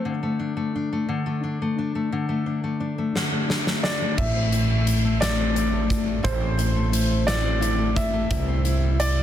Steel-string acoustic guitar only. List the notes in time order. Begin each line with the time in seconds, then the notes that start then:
Already playing: A3 C4
0.05 D3
0.23 A3
0.39 D4
0.57 A3
0.75 D4
0.93 A3
1.09 D3
1.26 A3
1.44 D4
1.62 A3
1.79 D4
1.95 A3
2.12 D3
2.29 A3
2.46 D4
2.64 A3
2.80 D4
2.98 A3
3.15 D3
3.32 A3
3.49 D4
3.66 A3
3.84 D4
4.01 A3
4.19 A2 E4
4.35 C4
4.52 E4
4.70 A3
4.87 E4
5.05 A3
5.20 A2 E4
5.38 C4
5.56 E4
5.72 A3
5.89 E4
6.05 A3
6.23 A2 E4
6.40 C4
6.57 E4
6.76 A3
6.92 E4
7.10 A3
7.27 A2 E4
7.44 C4
7.61 E4
7.78 A3
7.96 E4
8.13 A3
8.30 C3 E4
8.48 C4
8.65 E4
8.83 G3
9.17 G3